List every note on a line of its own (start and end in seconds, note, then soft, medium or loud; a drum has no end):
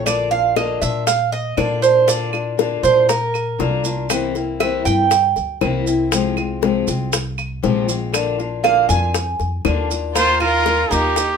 0.00 0.75 A#1 medium
0.05 0.30 D3 medium
0.05 0.30 A#3 medium
0.05 0.30 D4 medium
0.05 0.29 F4 medium
0.05 0.31 D5 medium
0.05 high bongo medium
0.05 claves medium
0.05 maracas medium
0.31 0.55 A#3 soft
0.31 0.56 D4 soft
0.31 0.55 F4 soft
0.31 0.56 F5 loud
0.31 high bongo soft
0.31 maracas soft
0.56 0.80 D3 medium
0.56 0.81 A#3 medium
0.56 0.81 D4 medium
0.56 0.80 F4 medium
0.56 0.81 D#5 medium
0.56 high bongo medium
0.56 claves medium
0.56 maracas soft
0.81 1.53 A#2 medium
0.81 1.06 A#3 soft
0.81 1.06 D4 soft
0.81 1.05 F4 soft
0.81 1.06 E5 medium
0.81 high bongo soft
0.81 maracas medium
1.07 1.31 F5 medium
1.07 muted steel-string acoustic guitar stroke medium
1.07 high bongo medium
1.07 maracas medium
1.32 1.57 D#5 loud
1.32 high bongo soft
1.32 maracas soft
1.57 2.77 A#2 medium
1.57 1.81 D3 medium
1.57 1.82 A#3 medium
1.57 1.82 D4 medium
1.57 1.80 F4 medium
1.57 1.82 D5 medium
1.57 high bongo soft
1.57 low bongo medium
1.57 claves medium
1.57 maracas soft
1.82 2.06 A#3 soft
1.82 2.07 D4 soft
1.82 2.06 F4 soft
1.82 2.07 C5 medium
1.82 maracas medium
2.07 2.32 D3 medium
2.07 2.32 A#3 medium
2.07 2.32 D4 medium
2.07 2.31 F4 medium
2.07 2.79 D5 medium
2.07 high bongo medium
2.07 maracas medium
2.32 2.57 A#3 soft
2.32 2.57 D4 soft
2.32 2.57 F4 medium
2.32 high bongo soft
2.32 claves medium
2.32 maracas soft
2.57 2.82 D3 medium
2.57 2.83 A#3 medium
2.57 2.83 D4 medium
2.57 2.82 F4 medium
2.57 high bongo medium
2.57 maracas soft
2.83 3.55 A#2 medium
2.83 3.08 A#3 soft
2.83 3.08 D4 soft
2.83 3.08 F4 soft
2.83 3.08 C5 medium
2.83 high bongo soft
2.83 maracas medium
3.08 4.06 A#4 medium
3.08 muted steel-string acoustic guitar stroke medium
3.08 high bongo medium
3.08 maracas medium
3.34 high bongo soft
3.34 claves medium
3.34 maracas soft
3.59 4.79 C2 medium
3.59 3.83 D3 medium
3.59 3.83 A#3 medium
3.59 3.84 D4 medium
3.59 3.83 F4 loud
3.59 high bongo soft
3.59 low bongo medium
3.59 maracas soft
3.84 4.09 A#3 soft
3.84 4.09 D4 soft
3.84 4.09 F4 medium
3.84 maracas medium
4.09 4.34 C3 medium
4.09 4.34 E3 medium
4.09 4.34 A#3 medium
4.09 4.34 C4 medium
4.09 4.33 E4 medium
4.09 high bongo medium
4.09 claves medium
4.09 maracas medium
4.34 4.60 A#3 soft
4.34 4.59 C4 soft
4.34 4.59 E4 soft
4.34 high bongo soft
4.34 maracas soft
4.60 4.84 C3 medium
4.60 4.84 E3 medium
4.60 4.85 A#3 medium
4.60 4.85 C4 medium
4.60 4.84 E4 medium
4.60 4.85 E5 medium
4.60 high bongo medium
4.60 claves medium
4.60 maracas soft
4.85 5.33 G2 medium
4.85 5.10 A#3 soft
4.85 5.10 C4 soft
4.85 5.10 E4 medium
4.85 5.57 G5 loud
4.85 high bongo soft
4.85 maracas medium
5.11 muted steel-string acoustic guitar stroke medium
5.11 high bongo medium
5.11 maracas medium
5.36 5.60 D2 medium
5.36 high bongo soft
5.36 maracas soft
5.61 6.81 C2 medium
5.61 5.85 C3 medium
5.61 5.85 E3 medium
5.61 5.86 A#3 medium
5.61 5.86 C4 medium
5.61 5.85 E4 medium
5.61 high bongo soft
5.61 low bongo medium
5.61 claves medium
5.61 maracas soft
5.86 6.11 A#3 soft
5.86 6.11 C4 soft
5.86 6.10 E4 medium
5.86 maracas medium
6.11 6.35 C3 medium
6.11 6.36 F3 medium
6.11 6.36 G#3 medium
6.11 6.36 C4 medium
6.11 6.35 F4 medium
6.11 high bongo medium
6.11 maracas medium
6.37 6.62 G#3 soft
6.37 6.62 C4 soft
6.37 6.61 F4 medium
6.37 high bongo soft
6.37 claves medium
6.37 maracas soft
6.62 6.86 C3 medium
6.62 6.86 F3 medium
6.62 6.87 G#3 medium
6.62 6.87 C4 medium
6.62 6.86 F4 medium
6.62 high bongo medium
6.62 maracas soft
6.87 7.59 C2 medium
6.87 7.12 G#3 soft
6.87 7.12 C4 soft
6.87 7.11 F4 medium
6.87 high bongo soft
6.87 maracas medium
7.12 muted steel-string acoustic guitar stroke medium
7.12 high bongo medium
7.12 maracas medium
7.38 high bongo soft
7.38 claves medium
7.38 maracas soft
7.63 8.83 A#1 loud
7.63 7.87 C3 medium
7.63 7.87 F3 medium
7.63 7.88 G#3 medium
7.63 7.88 C4 medium
7.63 7.86 F4 medium
7.63 high bongo soft
7.63 low bongo medium
7.63 maracas soft
7.88 8.13 G#3 soft
7.88 8.13 C4 soft
7.88 8.12 F4 medium
7.88 maracas medium
8.12 8.37 D3 medium
8.12 8.38 A#3 medium
8.12 8.38 D4 medium
8.12 8.37 F4 medium
8.12 high bongo medium
8.12 claves medium
8.12 maracas loud
8.38 8.63 A#3 soft
8.38 8.63 D4 soft
8.38 8.63 F4 medium
8.38 high bongo soft
8.38 maracas soft
8.63 8.88 D3 medium
8.63 8.88 A#3 medium
8.63 8.89 D4 medium
8.63 8.88 F4 medium
8.63 8.88 F5 loud
8.63 high bongo medium
8.63 claves medium
8.63 maracas soft
8.89 9.36 F2 medium
8.89 9.14 A#3 soft
8.89 9.14 D4 soft
8.89 9.13 F4 medium
8.89 9.61 G#5 loud
8.89 high bongo soft
8.89 maracas medium
9.14 muted steel-string acoustic guitar stroke medium
9.14 high bongo medium
9.14 maracas medium
9.40 9.63 F2 medium
9.40 high bongo soft
9.40 maracas soft
9.65 10.85 D#2 loud
9.65 9.89 D3 medium
9.65 9.89 A#3 medium
9.65 9.90 D4 medium
9.65 9.89 F4 medium
9.65 high bongo soft
9.65 low bongo medium
9.65 claves medium
9.65 maracas soft
9.90 10.15 A#3 soft
9.90 10.15 D4 soft
9.90 10.14 F4 soft
9.90 maracas medium
10.15 10.40 D#3 medium
10.15 10.40 A#3 medium
10.15 10.40 D#4 medium
10.15 10.39 F4 medium
10.15 10.41 F4 medium
10.15 10.40 A#4 medium
10.15 10.39 C5 loud
10.15 high bongo medium
10.15 maracas loud
10.40 10.66 D#4 soft
10.40 10.89 F4 medium
10.40 10.88 F4 medium
10.40 10.66 F4 soft
10.40 10.93 A#4 loud
10.40 10.65 A#4 soft
10.40 high bongo soft
10.40 claves medium
10.40 maracas soft
10.66 10.90 D#3 medium
10.66 10.90 A#3 medium
10.66 10.91 D#4 medium
10.66 10.91 F4 medium
10.66 10.90 A#4 medium
10.66 high bongo medium
10.66 maracas soft
10.91 11.37 D#2 medium
10.91 11.37 A#3 medium
10.91 11.37 D#4 medium
10.91 11.17 D#4 soft
10.91 11.16 F4 soft
10.91 11.37 G4 loud
10.91 11.16 A#4 soft
10.91 high bongo soft
10.91 maracas medium
11.16 muted steel-string acoustic guitar stroke medium
11.16 high bongo medium
11.16 maracas medium